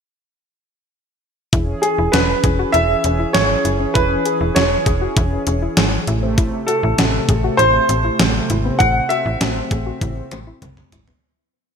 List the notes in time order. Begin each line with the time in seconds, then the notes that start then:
1.53 E1 E3 C#4 E4 G#4, kick, closed hi-hat
1.82 G#4, closed hi-hat
1.98 E1 E4
2.12 E1 F#4 B4, snare, closed hi-hat
2.44 E1 G#4, kick, closed hi-hat
2.59 F#4
2.72 E1 E4 E5, closed hi-hat
3.04 E1 C#4, closed hi-hat
3.20 E4
3.33 G#1 C#4 C#5, snare, closed hi-hat
3.65 F#1 E4, closed hi-hat
3.80 C#4
3.94 E1 E4 B4, kick, closed hi-hat
4.25 G#4, closed hi-hat
4.41 E1 E4
4.55 E1 F#4 C#5, snare, closed hi-hat
4.86 E1 G#4, kick, closed hi-hat
5.02 F#4
5.17 E1 E4, kick, closed hi-hat
5.47 E1 C#4, closed hi-hat
5.62 E4
5.77 G#1 C#4, snare, closed hi-hat
6.07 A1 C3 A3 E4, closed hi-hat
6.23 C4
6.38 E4, kick, closed hi-hat
6.67 F#4 A4, closed hi-hat
6.83 A1 E4
6.98 A1 F#4, snare, closed hi-hat
7.29 A1 G#4, kick, closed hi-hat
7.44 F#4
7.57 A1 E4 C5, closed hi-hat
7.89 A1 C4, closed hi-hat
8.05 E4
8.19 A1 C4, snare, closed hi-hat
8.50 G#1 C4 E4, closed hi-hat
8.65 B3
8.79 A1 E4 F#5, kick, closed hi-hat
9.09 F#4 E5, closed hi-hat
9.26 A1 E4
9.41 A1 F#4, snare, closed hi-hat
9.71 A1 G#4, kick, closed hi-hat
9.86 F#4
10.01 A1 E4, kick, closed hi-hat, high tom
10.31 A1 C4, closed hi-hat, mid tom
10.47 E4
10.62 C2 C4, closed hi-hat, mid tom
10.77 mid tom
10.92 G#1 E4, closed hi-hat, floor tom
11.08 B3, floor tom